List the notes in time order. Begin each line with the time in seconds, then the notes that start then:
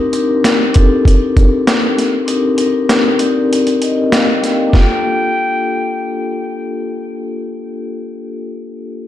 Already playing: C4 D4 D#4 G4 A#4
0.12 C4 D4 D#4 G4 A#4, closed hi-hat
0.44 snare, closed hi-hat
0.73 C4 D4 D#4 G4 A4, kick, closed hi-hat
1.05 kick, closed hi-hat
1.37 kick, closed hi-hat
1.67 snare, closed hi-hat
1.98 snare, closed hi-hat
2.26 C4 D4 D#4 G4 A#4, closed hi-hat
2.57 C4 D4 D#4 G4 A#4, closed hi-hat
2.89 snare, closed hi-hat
3.18 C4 D#4 G4 A#4 D5, closed hi-hat
3.53 closed hi-hat
3.67 closed hi-hat
3.82 D#5, closed hi-hat
4.12 F5, snare, closed hi-hat
4.41 G5, snare, closed hi-hat
4.66 A#3 D4
4.73 F4 G4 G5, kick, snare
4.80 A4